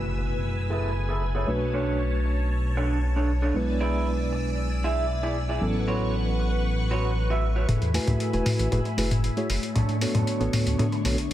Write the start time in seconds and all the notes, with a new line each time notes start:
Already playing: F#1 A3 E4 F#4 B4 G#5 E6, impact
0.19 muted clean electric guitar stroke
0.70 E4 G#4 A4 B4
1.09 E4 G#4 A4 B4
1.35 E4 G#4 A4 C#5
1.47 B1 A3 D4 F#4 B4 C#5 A5
1.74 D4 A4 C#5
2.25 muted clean electric guitar stroke
2.77 D4 A4 C#5
3.16 D4 A4 C#5
3.42 D4 A4 C#5
3.54 B1 G#3 B3 D4 E4 B4 D5 G#5 E6
3.80 E4 G#4 D5
4.32 muted clean electric guitar stroke
4.84 E4 G#4 E5
5.23 E4 G#4 D5
5.49 E4 G#4 D5
5.61 A1 F#3 B3 C#4 E4 A4 B4 F#5 C#6
5.87 F#4 B4 C#5
6.39 muted clean electric guitar stroke
6.91 F#4 B4 C#5
7.30 F#4 B4 E5
7.56 F#4 B4 C#5
7.68 F#1 A3 E4 G#4 A4 B4 E5 G#5 B5, closed hi-hat, mid tom
7.82 E2, closed hi-hat
7.94 A3 E4 F#4 B4 G#5, open hi-hat
8.07 C#2 E4 G#4 A4 B4, closed hi-hat, mid tom
8.20 closed hi-hat
8.33 E1 A3 E4 F#4 B4 G#5, closed hi-hat
8.46 open hi-hat, mid tom
8.59 A1, muted clean electric guitar stroke, closed hi-hat
8.72 F#1 A3 E4 F#4 G#4 B4, muted clean electric guitar stroke, closed hi-hat, mid tom
8.85 muted clean electric guitar stroke, closed hi-hat
8.97 F#1 A3 E4 F#4 G#4 B4, muted clean electric guitar stroke, open hi-hat
9.11 closed hi-hat, mid tom
9.24 closed hi-hat
9.37 A3 E4 F#4 G#4 C#5, closed hi-hat
9.50 F#1, muted clean electric guitar stroke, open hi-hat
9.63 closed hi-hat
9.75 B1 D4 A4 C#5 C#6, closed hi-hat, mid tom
9.89 A2, closed hi-hat
10.01 B3 D4 F#4 A4 C#5, open hi-hat
10.14 F#2 D4 A4 C#5, closed hi-hat, mid tom
10.27 closed hi-hat
10.40 A1 B3 D4 F#4 A4 C#5, closed hi-hat
10.53 D2, open hi-hat, mid tom
10.66 D2, muted clean electric guitar stroke, closed hi-hat
10.79 B3 D4 F#4 A4 C#5, muted clean electric guitar stroke, closed hi-hat, mid tom
10.92 muted clean electric guitar stroke, closed hi-hat
11.04 B1 B3 D4 F#4 A4 C#5, muted clean electric guitar stroke, open hi-hat
11.18 B1, closed hi-hat